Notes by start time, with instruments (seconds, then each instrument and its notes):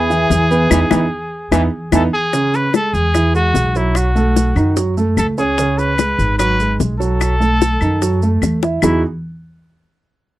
Already playing: upright bass E2, trombone E3, trumpet G#4
0.10 grand piano E3 E4 E5, maracas
0.30 upright bass E2, high bongo, low bongo, maracas
0.51 grand piano B3 B4 B5, high bongo, maracas
0.70 upright bass E2, trombone E3, grand piano B3 D#4 E4, high bongo, claves, maracas
0.90 upright bass E2, trombone E3, grand piano B3 D#4 E4, high bongo, claves, maracas
1.51 upright bass E2, trombone E3, grand piano B3 D#4 E4, high bongo, claves, maracas
1.92 upright bass E2, trombone E3, grand piano B3 D#4 E4, trumpet A4, high bongo, claves, maracas
2.13 trumpet G#4
2.33 grand piano C#3 C#4, high bongo, maracas
2.54 trumpet B4, high bongo, maracas
2.74 grand piano G#3 G#4, trumpet A4, high bongo, claves, maracas
2.93 upright bass E2, trumpet G#4, high bongo, maracas
3.14 grand piano E3 E4, high bongo, claves, maracas
3.34 grand piano G#3 G#4, trumpet F#4, maracas
3.54 upright bass B1, high bongo, low bongo, maracas
3.75 grand piano F#3 F#4, trumpet E4, high bongo, maracas
3.95 trumpet F#4, high bongo, claves, maracas
4.15 grand piano A3 A4, high bongo, maracas
4.36 high bongo, maracas
4.56 upright bass F#2, grand piano D#3 D#4, high bongo, claves, maracas
4.77 grand piano F#3 F#4, high bongo, maracas
4.97 grand piano A3 A4, maracas
5.17 upright bass C#2, trumpet A4, high bongo, low bongo, claves, maracas
5.38 grand piano C#4 C#5, trumpet G#4, high bongo, maracas
5.58 grand piano C#3 C#4, high bongo, maracas
5.78 trumpet B4, high bongo, maracas
5.98 grand piano G#3 G#4, high bongo, claves, maracas
6.19 upright bass G#1, high bongo, maracas
6.39 grand piano F#3 F#4, trumpet B4, high bongo, claves, maracas
6.60 grand piano G#3 G#4, maracas
6.80 upright bass B1, high bongo, low bongo, maracas
6.99 grand piano F#3 F#4, trumpet A4, high bongo, maracas
7.21 high bongo, claves, maracas
7.40 grand piano A3 A4, high bongo, maracas
7.62 high bongo, maracas
7.81 upright bass F#2, grand piano D#3 D#4, high bongo, claves, maracas
8.02 grand piano F#3 F#4, high bongo, maracas
8.22 grand piano A3 A4, maracas
8.42 upright bass E2, high bongo, low bongo, claves, maracas
8.63 grand piano E4 E5, high bongo, maracas
8.82 upright bass E2, grand piano E3 B3 D#4 E4 F#4 G#4, trumpet E4, low bongo, claves, maracas